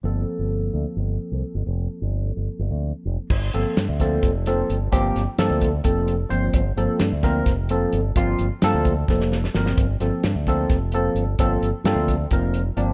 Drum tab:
CC |--------------|--------------|x-------------|--------------|
HH |--------------|--------------|--x-x-x-x-x-x-|x-x-x-x-x-x-x-|
SD |--------------|--------------|----o-----o---|--o-o---------|
BD |--------------|--------------|o-----o-o-----|o-----o-o-----|

CC |--------------|--------------|--------------|--------------|
HH |x-x-x-x-x-x-x-|x-x-x-x-------|x-x-x-x-x-x-x-|x-x-x-x-x-x-x-|
SD |----o-o-o-----|----o---oooooo|--o-o-o-o-----|----o---------|
BD |o-----o-o-----|o-----o-o-----|o-----o-o-----|o-----o-o-----|